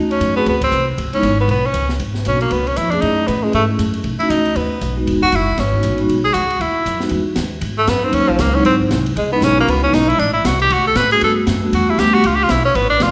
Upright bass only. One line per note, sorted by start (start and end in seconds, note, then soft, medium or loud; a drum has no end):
0.00 0.19 D#2 medium
0.20 0.45 F#2 medium
0.46 0.71 D2 medium
0.72 0.97 C2 medium
0.98 1.12 C#2 medium
1.13 muted upright bass stroke soft
1.23 1.48 G#1 medium
1.48 1.73 B1 medium
1.74 1.99 C#2 medium
2.00 2.25 G#1 medium
2.26 2.51 B1 medium
2.51 2.76 C#2 medium
2.78 3.02 F2 medium
3.02 3.27 F#2 medium
3.28 3.53 A2 medium
3.54 3.78 G#2 medium
3.79 4.04 F#2 medium
4.04 4.19 B1 medium
4.20 muted upright bass stroke soft
4.30 4.55 C#2 medium
4.55 4.80 D#2 medium
4.81 5.06 B1 medium
5.07 5.32 E1 medium
5.33 5.57 F#1 medium
5.58 5.83 G#1 medium
5.84 6.08 A1 medium
6.09 6.34 B1 medium
6.35 6.59 C#2 medium
6.60 6.85 D#2 medium
6.86 7.10 F#2 medium
7.11 7.36 E2 medium
7.36 7.61 D#2 medium
7.61 7.87 G#2 medium
7.87 8.12 F#2 medium
8.12 8.21 D#2 medium
8.21 8.29 C#2 medium
8.29 8.38 A#1 medium
8.39 8.64 C#2 loud
8.64 8.90 G#1 medium
8.91 9.15 C2 medium
9.16 9.40 C#2 medium
9.40 9.66 B1 loud
9.68 9.93 C#2 medium
9.93 10.18 B1 medium
10.18 10.44 A1 medium
10.45 10.70 C2 medium
10.70 10.95 D2 medium
10.95 11.21 A2 medium
11.22 11.46 G2 medium
11.47 11.72 F#2 medium
11.72 11.97 E2 medium
11.98 12.23 D2 medium
12.25 12.49 C#2 medium
12.49 12.74 B1 medium
12.75 13.00 A1 medium
13.01 13.11 F1 loud